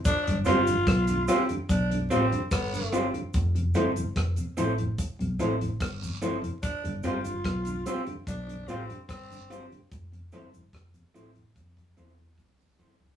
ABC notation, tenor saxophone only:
X:1
M:4/4
L:1/16
Q:1/4=73
K:Gmix
V:1 name="Tenor saxophone"
D2 F4 E z D2 C2 B,3 z | z16 | D2 F4 E z D2 C2 C3 z | z16 |]